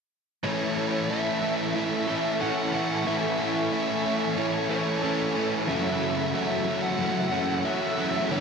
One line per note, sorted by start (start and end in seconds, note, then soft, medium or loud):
0.44 1.74 A2 medium
0.44 1.09 E3 medium
0.44 0.79 A3 medium
0.44 0.78 C#4 medium
0.44 0.76 E4 medium
0.44 0.76 A4 medium
0.44 8.26 A4 medium
0.44 1.12 C#5 medium
0.44 5.65 G#5 medium
0.44 5.65 C#6 medium
0.76 1.10 A3 medium
0.76 1.11 C#4 medium
0.76 1.12 E4 medium
0.76 1.10 A4 medium
1.09 1.75 E3 medium
1.09 1.45 A3 medium
1.09 1.43 C#4 medium
1.09 1.42 E4 medium
1.09 1.40 A4 medium
1.09 1.74 E5 loud
1.41 1.77 C#4 medium
1.41 1.78 E4 medium
1.41 1.76 A4 medium
1.45 1.76 A3 medium
1.75 2.41 A2 medium
1.75 2.39 E3 medium
1.75 2.10 A3 medium
1.75 2.08 C#4 loud
1.75 2.07 E4 loud
1.75 2.07 A4 loud
1.75 2.41 E5 medium
2.07 2.39 A2 medium
2.07 2.41 E3 medium
2.07 2.41 A3 medium
2.07 2.42 C#4 medium
2.07 2.43 E4 medium
2.07 2.42 A4 medium
2.40 3.04 A2 medium
2.40 3.07 E3 medium
2.40 2.76 A3 medium
2.40 2.74 C#4 medium
2.40 2.73 E4 medium
2.40 2.72 A4 medium
2.40 3.06 F#5 medium
2.73 3.07 E3 medium
2.73 3.08 A3 medium
2.73 3.08 C#4 medium
2.73 3.09 E4 medium
2.73 3.07 A4 medium
3.06 3.72 A2 medium
3.06 3.71 E3 medium
3.06 3.41 A3 loud
3.06 3.39 C#4 loud
3.06 3.38 E4 loud
3.06 3.38 A4 loud
3.06 3.71 E5 medium
3.38 3.72 A3 medium
3.38 3.73 C#4 medium
3.38 3.74 E4 medium
3.38 3.73 A4 medium
3.71 4.37 E3 medium
3.71 4.07 A3 medium
3.71 4.05 C#4 medium
3.71 4.03 E4 medium
3.71 4.03 A4 medium
3.71 4.34 E5 medium
4.03 4.37 A3 medium
4.03 4.38 C#4 medium
4.03 4.39 E4 medium
4.03 4.37 A4 medium
4.37 5.02 A2 medium
4.37 5.01 E3 loud
4.37 4.72 A3 medium
4.37 4.70 C#4 loud
4.37 4.69 E4 loud
4.37 4.67 A4 loud
4.37 4.69 C#5 medium
4.68 5.01 A2 medium
4.68 5.03 E3 medium
4.68 5.03 C#4 medium
4.68 5.04 E4 medium
4.68 5.02 A4 medium
4.68 5.31 C#5 medium
4.73 5.02 A3 soft
5.01 5.66 A2 medium
5.01 5.68 E3 medium
5.01 5.36 A3 medium
5.01 5.34 C#4 medium
5.01 5.34 E4 medium
5.01 5.34 A4 medium
5.34 5.69 E3 medium
5.34 5.67 A3 medium
5.34 5.66 C#4 medium
5.34 5.70 E4 medium
5.34 5.66 A4 medium
5.67 6.33 F#2 loud
5.67 6.33 C#3 medium
5.67 6.34 E3 medium
5.67 6.03 F#3 medium
5.67 6.01 A3 loud
5.67 6.01 C#4 loud
5.67 6.00 F#4 loud
5.67 6.33 E5 medium
5.67 8.27 F#5 medium
5.67 8.40 E6 medium
6.01 6.32 F#3 medium
6.01 6.33 A3 medium
6.01 6.35 C#4 medium
6.01 6.36 F#4 medium
6.33 6.99 E3 medium
6.33 6.69 F#3 medium
6.33 6.67 A3 medium
6.33 6.67 C#4 medium
6.33 6.65 F#4 medium
6.33 6.83 E5 medium
6.66 6.99 F#3 medium
6.66 7.00 A3 medium
6.66 7.00 C#4 medium
6.66 7.01 F#4 medium
6.83 7.61 F#5 medium
6.99 7.64 F#2 medium
6.99 7.65 C#3 medium
6.99 7.98 E3 medium
6.99 7.34 F#3 loud
6.99 7.32 A3 loud
6.99 7.31 C#4 medium
6.99 7.30 F#4 medium
7.31 7.63 F#2 medium
7.31 7.63 C#3 medium
7.31 7.62 F#3 medium
7.31 7.63 A3 medium
7.31 7.64 C#4 medium
7.31 7.66 F#4 medium
7.64 8.28 F#2 medium
7.64 8.29 C#3 medium
7.64 7.99 F#3 medium
7.64 7.98 A3 medium
7.64 7.97 C#4 medium
7.64 7.95 F#4 medium
7.64 8.32 E5 medium
7.97 8.31 E3 medium
7.97 8.29 F#3 medium
7.97 8.29 A3 medium
7.97 8.28 C#4 medium
7.97 8.28 F#4 medium
8.29 8.40 G2 medium
8.29 8.40 D3 medium
8.29 8.40 E3 medium
8.29 8.40 G3 loud
8.29 8.40 B3 medium
8.29 8.40 D4 medium
8.29 8.40 G4 loud
8.29 8.40 B4 medium
8.29 8.40 D5 medium
8.29 8.40 G5 medium